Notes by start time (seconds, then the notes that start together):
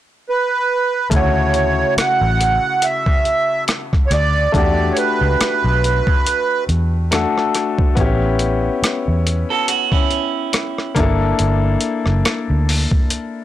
0.29 B4
1.10 D2 C#3 A3 E4, kick, closed hi-hat
1.15 F#4 C#5
1.54 closed hi-hat
1.97 F#5, muted fingered electric bass stroke, cross-stick, closed hi-hat
2.21 A1
2.41 closed hi-hat
2.82 E5, closed hi-hat
3.06 kick
3.25 closed hi-hat
3.68 cross-stick, closed hi-hat
3.93 kick, cross-stick
4.07 C#5
4.11 D2 D5, cross-stick, closed hi-hat
4.52 E2 A3 D4 F#4 D5, kick, closed hi-hat
4.58 G4
4.92 C#5
4.97 B4, closed hi-hat
5.21 C#2
5.40 muted fingered electric bass stroke, cross-stick, closed hi-hat
5.64 B1
5.84 closed hi-hat
6.07 kick
6.26 closed hi-hat
6.69 E2, closed hi-hat
7.11 A3 D4 F#4 A4, cross-stick, closed hi-hat
7.38 cross-stick
7.55 cross-stick, closed hi-hat
7.79 kick
7.95 A1 B3 C#4 E4, kick, closed hi-hat
8.01 G4
8.39 closed hi-hat
8.82 muted fingered electric bass stroke, cross-stick, closed hi-hat
9.08 E2
9.27 closed hi-hat
9.50 F#4 A4
9.68 F#4, closed hi-hat
9.92 C#4 E4, kick
10.11 closed hi-hat
10.53 cross-stick, closed hi-hat
10.78 cross-stick
10.95 G1 A#3 D4, kick, cross-stick, closed hi-hat
10.99 E4 A4
11.39 G1, closed hi-hat
11.81 closed hi-hat
12.06 F#1, cross-stick
12.25 muted fingered electric bass stroke, cross-stick, closed hi-hat
12.50 D2
12.69 open hi-hat
12.91 kick
13.10 closed hi-hat